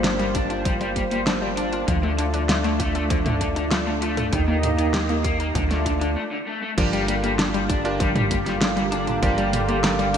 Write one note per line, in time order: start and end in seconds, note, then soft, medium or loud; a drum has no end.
0.00 1.85 G1 medium
0.00 1.84 A#3 medium
0.00 4.29 F4 medium
0.00 1.84 G4 medium
0.00 1.85 C5 medium
0.04 0.16 D4 loud
0.04 0.09 D4 medium
0.04 snare loud
0.04 closed hi-hat medium
0.19 0.34 G3 loud
0.19 0.24 G3 loud
0.19 closed hi-hat soft
0.35 0.46 D4 medium
0.35 0.46 D4 loud
0.35 kick loud
0.35 closed hi-hat medium
0.50 0.58 D4 loud
0.50 0.62 F4 medium
0.50 closed hi-hat soft
0.65 0.77 F3 loud
0.65 0.73 G3 medium
0.65 kick loud
0.65 closed hi-hat medium
0.81 0.88 G3 loud
0.81 closed hi-hat soft
0.96 1.01 G3 medium
0.96 1.07 A#3 medium
0.96 kick medium
0.96 closed hi-hat medium
1.11 1.19 G3 medium
1.11 1.23 A#3 medium
1.11 closed hi-hat soft
1.27 1.38 D4 loud
1.27 1.31 D4 medium
1.27 snare loud
1.27 closed hi-hat medium
1.42 1.56 G3 loud
1.42 1.47 G3 loud
1.57 1.69 D4 loud
1.57 1.69 D4 medium
1.57 closed hi-hat medium
1.73 1.80 D4 loud
1.73 1.84 F4 medium
1.73 closed hi-hat soft
1.88 4.30 D2 medium
1.88 1.96 D3 medium
1.88 1.99 F3 loud
1.88 4.30 A3 medium
1.88 4.30 D4 medium
1.88 4.31 D5 medium
1.88 kick loud
1.88 closed hi-hat medium
2.03 2.11 D3 loud
2.03 2.10 A3 loud
2.18 2.23 D3 medium
2.18 2.30 D4 medium
2.18 closed hi-hat medium
2.34 2.42 D3 medium
2.34 2.45 D4 medium
2.34 closed hi-hat medium
2.49 2.54 A3 medium
2.49 2.61 F4 loud
2.49 snare loud
2.49 closed hi-hat medium
2.64 2.69 D3 loud
2.64 2.79 A3 loud
2.64 closed hi-hat soft
2.80 2.91 A3 loud
2.80 2.91 F4 medium
2.80 kick medium
2.80 closed hi-hat medium
2.95 3.03 A3 loud
2.95 3.06 A4 medium
2.95 closed hi-hat soft
3.10 3.18 D3 medium
3.10 3.22 F3 loud
3.10 kick loud
3.10 closed hi-hat medium
3.26 3.33 D3 loud
3.26 3.33 A3 loud
3.26 closed hi-hat soft
3.26 mid tom loud
3.41 3.46 D3 medium
3.41 3.52 D4 medium
3.41 kick medium
3.41 closed hi-hat medium
3.56 3.64 D3 medium
3.56 3.68 D4 medium
3.56 closed hi-hat soft
3.71 3.76 A3 medium
3.71 3.83 F4 loud
3.71 snare loud
3.71 closed hi-hat medium
3.87 3.92 D3 loud
3.87 4.01 A3 loud
4.02 4.14 A3 loud
4.02 4.14 F4 medium
4.02 closed hi-hat medium
4.17 4.25 A3 loud
4.17 4.29 A4 medium
4.17 closed hi-hat medium
4.17 mid tom medium
4.32 5.52 D#2 medium
4.32 4.40 D#3 medium
4.32 4.44 G3 loud
4.32 5.54 A#3 medium
4.32 5.54 D#4 medium
4.32 5.54 G4 medium
4.32 5.54 D#5 medium
4.32 kick loud
4.32 closed hi-hat medium
4.48 4.56 D#3 loud
4.48 4.55 A#3 loud
4.63 4.68 D#3 medium
4.63 4.75 D#4 medium
4.63 closed hi-hat medium
4.63 mid tom medium
4.79 4.86 D#3 medium
4.79 4.90 D#4 medium
4.79 closed hi-hat medium
4.94 4.98 A#3 medium
4.94 5.05 G4 loud
4.94 snare loud
4.94 closed hi-hat medium
5.09 5.14 D#3 loud
5.09 5.24 A#3 medium
5.09 closed hi-hat soft
5.24 5.36 A#3 loud
5.24 5.36 G4 medium
5.24 kick loud
5.24 closed hi-hat medium
5.40 5.47 A#3 loud
5.40 5.51 A#4 medium
5.40 closed hi-hat medium
5.55 6.16 D2 medium
5.55 5.63 D3 medium
5.55 5.67 F3 loud
5.55 6.16 A3 medium
5.55 6.16 D4 medium
5.55 6.16 F4 medium
5.55 6.16 D5 medium
5.55 kick loud
5.55 closed hi-hat medium
5.70 5.78 D3 loud
5.70 5.77 A3 loud
5.70 snare soft
5.70 closed hi-hat soft
5.86 5.90 D3 medium
5.86 5.97 D4 medium
5.86 kick medium
5.86 closed hi-hat medium
6.01 6.09 D3 medium
6.01 6.13 D4 medium
6.01 closed hi-hat medium
6.16 6.21 A3 medium
6.32 6.36 D3 loud
6.47 6.58 A3 loud
6.62 6.70 A3 loud
6.78 9.19 G1 loud
6.78 10.18 D3 medium
6.78 6.89 F3 loud
6.78 6.85 G3 medium
6.78 10.18 A#3 medium
6.78 7.81 D4 medium
6.78 10.18 F4 medium
6.78 7.81 F4 medium
6.78 10.18 G4 medium
6.78 7.81 G4 medium
6.78 7.81 A#4 medium
6.78 7.81 D5 medium
6.78 kick loud
6.78 closed hi-hat medium
6.78 crash loud
6.93 7.01 G3 loud
6.93 7.00 G3 loud
6.93 closed hi-hat soft
7.08 7.13 G3 medium
7.08 7.20 A#3 medium
7.08 closed hi-hat loud
7.23 7.31 G3 medium
7.23 7.35 A#3 medium
7.23 closed hi-hat soft
7.39 7.50 D4 loud
7.39 7.43 D4 medium
7.39 snare loud
7.39 closed hi-hat medium
7.54 7.59 G3 loud
7.54 7.69 G3 loud
7.54 closed hi-hat soft
7.69 7.81 D4 loud
7.69 7.81 D4 medium
7.69 kick loud
7.69 closed hi-hat loud
7.85 8.08 D4 medium
7.85 7.93 D4 loud
7.85 7.96 F4 medium
7.85 8.08 F4 medium
7.85 8.08 G4 medium
7.85 8.08 A#4 medium
7.85 8.08 D5 medium
7.85 closed hi-hat soft
8.00 8.11 F3 loud
8.00 8.08 G3 medium
8.00 kick loud
8.00 closed hi-hat medium
8.15 8.22 G3 loud
8.15 8.23 G3 loud
8.15 closed hi-hat soft
8.15 mid tom loud
8.31 8.35 G3 medium
8.31 8.42 A#3 medium
8.31 kick medium
8.31 closed hi-hat loud
8.46 8.54 G3 medium
8.46 8.57 A#3 medium
8.46 snare soft
8.46 closed hi-hat soft
8.61 8.73 D4 loud
8.61 8.66 D4 medium
8.61 snare loud
8.61 closed hi-hat medium
8.77 8.91 G3 loud
8.77 8.81 G3 loud
8.77 closed hi-hat soft
8.92 9.03 D4 medium
8.92 9.04 D4 loud
8.92 closed hi-hat loud
9.07 9.15 D4 loud
9.07 9.19 F4 medium
9.07 closed hi-hat soft
9.07 mid tom medium
9.23 10.18 G1 medium
9.23 9.34 F3 loud
9.23 9.30 G3 medium
9.23 10.18 D4 medium
9.23 10.18 F4 medium
9.23 10.18 G4 medium
9.23 10.18 A#4 medium
9.23 10.18 D5 medium
9.23 kick loud
9.23 closed hi-hat medium
9.38 9.45 G3 loud
9.38 9.46 G3 loud
9.38 closed hi-hat soft
9.53 9.58 G3 medium
9.53 9.65 A#3 medium
9.53 closed hi-hat loud
9.53 mid tom medium
9.69 9.76 G3 medium
9.69 9.80 A#3 medium
9.69 closed hi-hat soft
9.84 9.95 D4 loud
9.84 9.89 D4 medium
9.84 snare loud
9.84 closed hi-hat medium
9.99 10.14 G3 loud
9.99 10.04 G3 loud
9.99 closed hi-hat soft
10.14 10.18 D4 medium
10.14 closed hi-hat loud